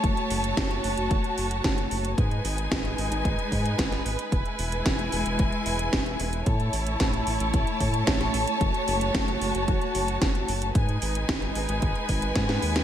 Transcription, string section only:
0.00 2.14 A3 medium
0.00 2.16 F#4 medium
0.00 2.14 C#5 medium
0.00 2.14 A5 medium
2.18 4.30 G#3 medium
2.18 4.30 D#4 medium
2.18 6.43 B4 medium
2.18 4.30 G#5 medium
4.32 6.44 G#3 medium
4.32 6.44 E4 medium
4.32 6.44 G#5 medium
6.46 10.71 A3 medium
6.46 8.59 E4 medium
6.46 10.71 C#5 medium
6.46 10.71 A5 medium
8.61 10.73 F#4 medium
10.75 12.84 G#3 medium
10.75 12.84 D#4 medium
10.75 12.84 B4 medium
10.75 12.84 G#5 medium

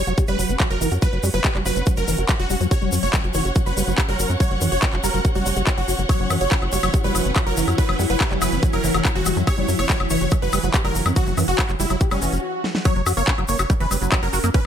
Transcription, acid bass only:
0.07 0.13 F#3 loud
0.18 0.27 G4 medium
0.28 0.37 G3 loud
0.39 0.51 F#3 medium
0.49 0.58 C#4 medium
0.60 0.69 F#3 medium
0.71 0.79 F#3 medium
0.81 0.90 E3 loud
0.92 0.95 F#4 medium
1.02 1.08 F#3 medium
1.13 1.19 F#3 medium
1.23 1.29 G3 loud
1.34 1.40 F#3 loud
1.44 1.53 G4 medium
1.55 1.64 G3 loud
1.66 1.78 F#3 medium
1.76 1.85 C#4 medium
1.87 1.96 F#3 medium
1.97 2.06 F#3 medium
2.08 2.17 E3 loud
2.18 2.22 F#4 medium
2.29 2.35 F#3 medium
2.40 2.45 F#3 medium
2.50 2.56 G3 loud
2.61 2.67 F#3 loud
2.71 2.80 G4 medium
2.82 2.91 G3 loud
2.92 3.04 F#3 medium
3.03 3.12 C#4 medium
3.13 3.22 F#3 medium
3.24 3.33 F#3 medium
3.35 3.44 E3 loud
3.45 3.49 F#4 medium
3.56 3.62 F#3 medium
3.66 3.72 F#3 medium
3.77 3.83 G3 loud
3.87 3.93 F#3 loud
3.98 4.07 G4 medium
4.09 4.17 G3 loud
4.19 4.31 F#3 medium
4.30 4.39 C#4 medium
4.40 4.49 F#3 medium
4.51 4.60 F#3 medium
4.61 4.70 E3 loud
4.72 4.76 F#4 medium
4.83 4.88 F#3 medium
4.93 4.99 F#3 medium
5.04 5.10 G3 loud
5.14 5.20 F#3 loud
5.25 5.34 G4 medium
5.35 5.44 G3 loud
5.46 5.55 G3 medium
5.56 5.62 G3 loud
5.67 5.73 F#3 loud
5.78 5.81 F#3 medium
5.88 5.97 F#4 medium
5.99 6.02 F#3 medium
6.09 6.18 F#3 medium
6.20 6.29 F#3 medium
6.30 6.39 E3 loud
6.41 6.45 F#4 medium
6.52 6.57 F#3 medium
6.62 6.68 F#3 medium
6.73 6.79 G3 loud
6.83 6.89 F#3 loud
6.94 7.03 G4 medium
7.04 7.13 G3 loud
7.15 7.27 F#3 medium
7.25 7.34 C#4 medium
7.36 7.45 F#3 medium
7.47 7.55 F#3 medium
7.57 7.66 E3 loud
7.68 7.71 F#4 medium
7.78 7.84 F#3 medium
7.89 7.95 F#3 medium
7.99 8.05 G3 loud
8.10 8.16 F#3 loud
8.21 8.29 G4 medium
8.31 8.40 G3 loud
8.42 8.54 F#3 medium
8.52 8.61 C#4 medium
8.63 8.72 F#3 medium
8.73 8.82 F#3 medium
8.84 8.93 E3 loud
8.94 8.98 F#4 medium
9.05 9.11 F#3 medium
9.16 9.22 F#3 medium
9.26 9.32 G3 loud
9.37 9.43 F#3 loud
9.47 9.56 G4 medium
9.58 9.67 G3 loud
9.68 9.80 F#3 medium
9.79 9.88 C#4 medium
9.89 9.98 F#3 medium
10.00 10.09 F#3 medium
10.11 10.20 E3 loud
10.21 10.25 F#4 medium
10.32 10.38 F#3 medium
10.42 10.48 F#3 medium
10.53 10.59 G3 loud
10.63 10.69 F#3 loud
10.74 10.83 G4 medium
10.85 10.94 G3 loud
10.95 11.07 F#3 medium
11.06 11.15 C#4 medium
11.16 11.25 F#3 medium
11.27 11.36 F#3 medium
11.37 11.46 E3 loud
11.48 11.52 F#4 medium
11.59 11.64 F#3 medium
11.69 11.75 F#3 medium
11.80 11.86 G3 loud
11.90 11.96 F#3 loud
12.01 12.10 G4 medium
12.11 12.20 G3 loud
12.22 12.34 E3 medium
12.32 12.38 F#3 medium
12.85 12.94 F#3 loud
12.96 13.02 F#3 medium
13.06 13.12 F#4 loud
13.17 13.23 A#3 loud
13.28 13.34 C#4 medium
13.38 13.44 F#3 loud
13.49 13.58 A#3 medium
13.59 13.63 F#4 loud
13.70 13.73 G3 loud
13.80 13.86 E3 loud
13.91 13.97 G3 medium
14.02 14.10 F#3 medium
14.12 14.21 F#3 loud
14.23 14.29 F#3 medium
14.33 14.39 F#4 loud
14.44 14.50 A#3 loud
14.54 14.60 C#4 medium

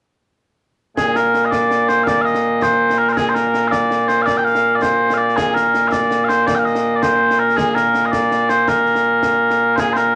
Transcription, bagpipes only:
0.97 10.15 A#2 medium
0.97 10.15 A#3 medium
0.97 1.16 G#4 medium
1.16 1.45 A#4 medium
1.45 1.51 D#5 medium
1.51 1.88 D5 loud
1.88 2.03 C5 medium
2.03 2.08 F5 loud
2.08 2.21 D5 loud
2.21 2.62 D#5 loud
2.21 2.25 F5 loud
2.62 2.98 C5 medium
2.98 3.09 A#4 medium
3.09 3.17 A#4 medium
3.09 3.13 C5 medium
3.17 3.29 G#4 loud
3.29 3.35 C5 medium
3.35 3.68 A#4 loud
3.68 4.08 D5 medium
3.68 3.71 F5 medium
4.08 4.22 C5 loud
4.22 4.37 D5 loud
4.22 4.26 F5 loud
4.37 4.45 G5 medium
4.45 4.75 F5 loud
4.75 4.82 D5 medium
4.82 5.14 C5 medium
5.14 5.37 D5 loud
5.14 5.18 F5 loud
5.37 5.54 G#4 loud
5.54 5.88 A#4 loud
5.88 6.24 D5 medium
5.88 5.92 F5 medium
6.24 6.46 C5 medium
6.24 6.28 F5 medium
6.46 6.55 D5 loud
6.55 6.65 F5 medium
6.55 6.59 G5 medium
6.65 6.96 D#5 loud
6.96 7.02 D5 medium
7.02 7.39 C5 medium
7.39 7.57 A#4 medium
7.57 7.75 G#4 medium
7.75 8.06 A#4 medium
8.06 8.12 D#5 medium
8.12 8.49 D5 medium
8.49 8.69 C5 medium
8.69 9.76 A#4 medium
9.76 9.93 G#4 medium
9.76 9.80 C5 medium
9.93 10.15 A#4 medium
9.93 9.97 C5 medium

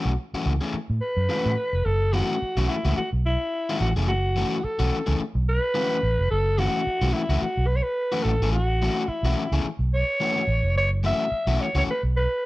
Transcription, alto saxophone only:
1.01 1.86 B4 loud
1.85 2.15 A4 loud
2.13 2.70 F#4 medium
2.69 2.97 E4 medium
2.97 3.10 F#4 medium
3.26 3.77 E4 medium
3.81 3.93 F#4 medium
4.08 4.66 F#4 loud
4.64 5.19 A4 medium
5.49 6.27 B4 loud
6.30 6.60 A4 loud
6.59 7.14 F#4 loud
7.13 7.43 E4 medium
7.41 7.68 F#4 loud
7.67 7.77 B4 loud
7.76 7.84 C#5 medium
7.82 8.24 B4 loud
8.23 8.52 A4 loud
8.52 9.09 F#4 loud
9.08 9.64 E4 medium
9.94 10.72 C#5 loud
10.77 10.90 C#5 loud
11.06 11.62 E5 loud
11.61 11.76 C#5 loud
11.78 11.83 C#5 loud
11.91 12.02 B4 loud
12.16 12.46 B4 loud

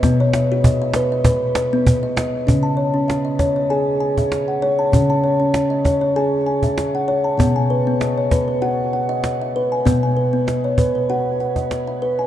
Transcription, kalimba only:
0.03 2.43 B2 medium
0.03 0.34 B3 medium
0.20 0.65 C#5 medium
0.35 0.80 E5 medium
0.52 0.81 F#4 medium
0.66 1.11 D#5 medium
0.82 1.26 E5 medium
0.96 1.24 B4 medium
1.12 1.56 D#5 medium
1.25 1.27 B4 medium
1.56 2.03 B4 medium
1.73 2.03 B3 medium
2.03 2.15 D#5 medium
2.17 2.47 D#5 medium
2.47 4.89 C#3 medium
2.47 2.78 C#4 medium
2.63 3.08 A5 soft
2.77 3.24 C#5 soft
2.94 3.25 C#4 medium
3.08 3.55 E5 soft
3.25 3.70 D#5 medium
3.39 3.55 C#5 medium
3.56 4.01 C#5 soft
3.70 4.01 G#4 medium
3.70 3.99 G#5 medium
4.00 4.48 G#5 medium
4.18 4.48 E5 medium
4.48 4.93 F#5 soft
4.62 4.93 C#5 medium
4.79 5.09 A5 soft
4.92 7.34 C#3 medium
4.92 5.24 C#4 medium
5.10 5.54 A5 soft
5.24 5.71 C#5 medium
5.40 5.70 C#4 medium
5.70 6.15 D#5 medium
5.85 6.00 C#5 medium
6.01 6.46 C#5 medium
6.16 6.47 G#4 medium
6.16 6.45 G#5 medium
6.46 6.94 G#5 soft
6.64 6.94 E5 medium
6.95 7.39 F#5 medium
7.08 7.39 C#5 medium
7.24 7.55 A5 soft
7.38 9.80 B2 medium
7.38 7.69 B3 medium
7.56 8.00 G#5 soft
7.70 8.17 B4 medium
7.87 8.17 B3 medium
8.01 8.48 D#5 medium
8.18 8.62 C#5 medium
8.32 8.47 B4 medium
8.48 8.93 B4 soft
8.62 8.93 F#4 medium
8.62 8.92 F#5 medium
8.93 9.40 F#5 medium
9.09 9.40 D#5 medium
9.42 9.86 E5 medium
9.56 9.86 B4 medium
9.72 10.02 G#5 soft
9.85 12.27 B2 medium
9.85 10.16 B3 medium
10.03 10.47 G#5 soft
10.17 10.64 B4 soft
10.33 10.63 B3 medium
10.47 10.94 D#5 soft
10.64 11.09 C#5 soft
10.78 10.94 B4 medium
10.95 11.40 B4 soft
11.10 11.40 F#4 medium
11.10 11.39 F#5 medium
11.40 11.87 F#5 soft
11.56 11.87 D#5 medium
11.88 12.27 E5 soft
12.02 12.27 B4 medium
12.19 12.27 G#5 soft

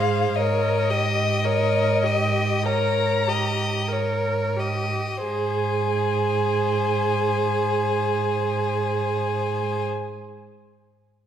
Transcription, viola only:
0.00 0.38 G#4 soft
0.39 0.92 A#4 soft
0.90 1.46 G4 soft
1.45 2.05 A#4 soft
2.04 2.66 G4 soft
2.66 3.29 A#4 soft
3.28 3.90 G4 soft
3.89 4.58 A#4 soft
4.57 5.23 G4 soft
5.24 9.85 G#4 soft

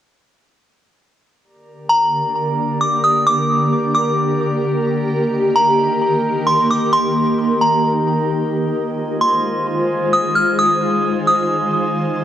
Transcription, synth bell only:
1.89 2.77 A#5 medium
2.81 3.02 D6 medium
3.04 3.25 D#6 medium
3.27 3.91 D6 loud
3.95 5.05 D6 medium
5.55 6.43 A#5 medium
6.47 6.68 C6 medium
6.70 6.92 D6 medium
6.93 7.57 C6 loud
7.61 8.72 A#5 medium
9.21 10.09 C6 medium
10.13 10.35 D#6 medium
10.35 10.57 F6 medium
10.59 11.24 D#6 medium
11.27 12.24 D#6 medium

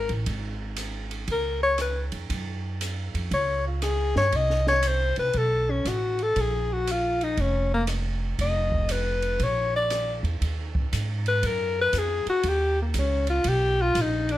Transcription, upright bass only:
0.09 0.26 A1 medium
0.27 1.25 G#1 medium
1.28 2.09 C#2 medium
2.12 2.29 F2 medium
2.30 3.10 F#2 medium
3.14 3.30 F2 medium
3.31 4.12 C#2 medium
4.16 4.32 G2 medium
4.33 5.13 C2 medium
5.18 5.33 C2 medium
5.34 5.82 B1 medium
5.85 6.32 A1 medium
6.36 7.34 A#1 medium
7.37 8.35 F1 medium
8.38 9.36 F1 medium
9.39 10.20 A#1 medium
10.23 10.40 E2 medium
10.41 10.90 D#2 medium
10.93 11.42 G#2 medium
11.43 11.92 F#2 medium
11.93 12.24 F2 medium
12.26 muted upright bass stroke soft
12.44 12.93 D#2 medium
12.94 13.44 C#2 medium
13.45 13.94 B1 medium
13.95 14.38 A#1 medium

